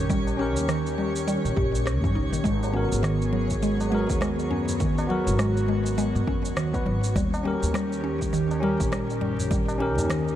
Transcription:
0.00 0.57 A#1 medium
0.00 2.41 D#3 medium
0.00 0.35 C#4 medium
0.00 2.41 C#4 medium
0.00 10.36 C#4 medium
0.00 0.36 G4 medium
0.00 2.41 G4 medium
0.00 0.37 A#4 medium
0.00 10.36 C#5 medium
0.10 0.20 G3 loud
0.10 kick loud
0.10 shaker medium
0.27 tabla na medium
0.27 shaker soft
0.37 1.99 C#4 medium
0.37 0.68 C#4 medium
0.37 2.00 G4 medium
0.37 2.01 A#4 medium
0.57 1.40 D#2 medium
0.57 shaker medium
0.69 0.85 D#3 loud
0.69 cross-stick medium
0.69 shaker medium
0.86 shaker soft
0.98 1.08 G3 medium
0.98 tabla na soft
0.98 tabla tin soft
1.16 shaker medium
1.27 1.43 G3 loud
1.27 tabla tin soft
1.27 shaker medium
1.45 1.55 A#1 medium
1.45 tabla tin medium
1.45 shaker soft
1.57 2.04 A#1 medium
1.57 1.73 G4 medium
1.57 kick medium
1.57 tabla ge medium
1.74 tabla tin soft
1.74 shaker medium
1.86 2.02 G4 medium
1.86 cross-stick medium
1.86 shaker medium
2.04 2.14 G2 medium
2.04 2.15 C#4 medium
2.04 kick loud
2.04 tabla tin medium
2.04 shaker soft
2.15 2.33 C#2 medium
2.15 2.31 D#4 medium
2.33 2.43 A#1 medium
2.33 2.40 D#3 medium
2.33 shaker medium
2.44 2.87 G#1 medium
2.44 7.12 F#3 medium
2.44 2.55 G#3 loud
2.44 7.12 B3 medium
2.44 4.78 G#4 medium
2.44 kick loud
2.44 shaker soft
2.63 tabla na medium
2.63 shaker soft
2.72 3.88 B3 medium
2.72 3.02 C#4 medium
2.72 3.89 F#4 medium
2.77 3.90 A#4 medium
2.92 4.05 G#1 medium
2.92 shaker medium
3.03 3.20 D#3 loud
3.03 cross-stick medium
3.03 shaker soft
3.22 shaker soft
3.33 3.43 F#3 medium
3.50 kick medium
3.50 shaker medium
3.63 3.91 G#3 loud
3.63 shaker medium
3.80 tabla na medium
3.80 shaker soft
3.90 4.20 G#3 medium
3.90 5.06 B3 medium
3.90 5.07 F#4 medium
3.94 5.08 A#4 medium
4.10 5.28 D#2 medium
4.10 kick loud
4.10 shaker medium
4.21 4.31 G#3 loud
4.21 cross-stick medium
4.21 shaker medium
4.39 tabla tin medium
4.39 shaker soft
4.51 4.79 C#4 medium
4.51 tabla ge medium
4.68 tabla ge medium
4.68 shaker medium
4.80 4.97 D#3 loud
4.80 7.14 F#4 medium
4.80 kick loud
4.80 shaker medium
4.98 tabla na medium
4.98 shaker soft
5.07 5.20 F#3 medium
5.07 6.69 B3 medium
5.07 6.70 F#4 medium
5.11 6.71 A#4 medium
5.27 6.10 G#1 medium
5.27 shaker medium
5.39 5.67 G#3 loud
5.39 cross-stick medium
5.39 shaker soft
5.57 shaker soft
5.68 5.97 G#3 medium
5.68 tabla na soft
5.68 tabla tin soft
5.86 shaker medium
5.98 6.08 G#3 loud
5.98 tabla tin medium
5.98 shaker medium
6.15 6.28 G#2 medium
6.15 tabla tin medium
6.15 shaker soft
6.27 6.83 D#2 loud
6.27 6.56 C#4 medium
6.27 kick medium
6.27 tabla ge medium
6.45 tabla tin soft
6.45 shaker medium
6.57 6.73 D#3 loud
6.57 cross-stick loud
6.57 shaker medium
6.73 7.14 B3 medium
6.73 7.14 F#4 medium
6.73 7.15 B4 loud
6.73 kick medium
6.73 tabla tin medium
6.73 shaker soft
6.86 7.11 G#1 medium
6.86 6.96 F#3 medium
7.04 shaker medium
7.16 7.57 D#2 medium
7.16 10.36 D#3 medium
7.16 7.44 G3 loud
7.16 9.49 C#4 medium
7.16 10.36 G4 medium
7.16 kick loud
7.16 shaker medium
7.34 tabla na medium
7.34 shaker soft
7.43 7.73 G3 medium
7.43 8.59 C#4 medium
7.43 8.60 G4 medium
7.47 8.61 A#4 loud
7.63 8.75 D#2 medium
7.63 shaker medium
7.74 7.84 G3 loud
7.74 cross-stick medium
7.74 shaker soft
7.92 shaker soft
8.04 8.32 C#4 medium
8.21 kick medium
8.21 shaker medium
8.33 8.50 D#3 loud
8.33 shaker medium
8.51 tabla na medium
8.51 shaker soft
8.60 8.73 G3 medium
8.60 9.76 C#4 medium
8.60 9.77 G4 medium
8.60 9.78 A#4 loud
8.80 9.98 A#1 medium
8.80 kick loud
8.80 shaker medium
8.92 9.20 G3 loud
8.92 cross-stick loud
8.92 shaker medium
9.10 tabla tin medium
9.10 shaker soft
9.21 9.50 G3 medium
9.21 tabla ge medium
9.39 tabla ge medium
9.39 shaker medium
9.51 9.61 G3 loud
9.51 10.36 D#4 medium
9.51 kick loud
9.51 shaker soft
9.68 tabla na medium
9.68 shaker soft
9.78 10.36 C#4 medium
9.78 10.09 C#4 medium
9.78 10.36 G4 medium
9.78 10.36 A#4 loud
9.98 10.36 D#2 medium
9.98 tabla na medium
9.98 tabla ge medium
9.98 shaker medium
10.10 10.26 D#3 loud
10.10 cross-stick loud
10.10 shaker medium
10.28 shaker soft

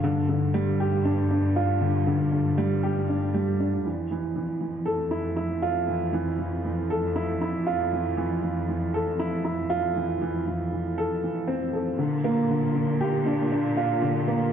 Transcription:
0.00 3.82 G2 medium
0.00 0.04 D3 medium
0.00 0.18 D3 loud
0.29 0.53 D3 medium
0.54 0.69 G3 loud
0.80 0.94 G4 medium
1.05 1.20 D4 medium
1.31 1.55 D4 medium
1.56 1.71 F4 medium
1.81 2.05 D3 medium
2.07 2.21 D3 medium
2.32 2.56 D3 medium
2.58 2.72 G3 loud
2.83 2.98 G4 medium
3.09 3.33 D4 medium
3.34 3.58 G3 medium
3.60 3.84 D4 medium
3.85 11.96 F2 medium
3.85 4.09 E3 medium
4.11 4.25 E3 medium
4.36 4.59 E3 medium
4.61 4.85 E3 medium
4.86 5.01 A4 loud
5.11 5.26 E4 medium
5.36 5.61 E4 medium
5.62 5.77 F4 loud
5.88 6.11 E3 medium
6.13 6.28 E3 loud
6.39 6.63 E3 medium
6.64 6.89 E3 medium
6.90 7.05 A4 medium
7.16 7.30 E4 medium
7.41 7.65 E4 medium
7.67 7.81 F4 loud
7.93 8.16 E3 medium
8.17 8.32 E3 loud
8.43 8.67 E3 medium
8.68 8.92 E3 medium
8.94 9.08 A4 medium
9.19 9.34 E4 loud
9.45 9.69 E4 medium
9.70 9.84 F4 loud
9.96 10.20 E3 medium
10.21 10.35 E3 loud
10.47 10.71 E3 medium
10.72 10.96 E3 medium
10.98 11.12 A4 loud
11.23 11.47 E3 medium
11.48 11.72 C4 medium
11.73 11.97 A4 medium
11.99 14.53 A#2 medium
11.99 12.23 D3 medium
12.24 12.48 A#3 loud
12.51 12.74 D3 medium
12.75 12.99 D3 medium
13.01 13.15 G4 loud
13.26 13.40 D4 loud
13.52 13.76 D4 medium
13.77 13.91 F4 loud
14.02 14.26 D3 medium
14.28 14.52 A#3 medium

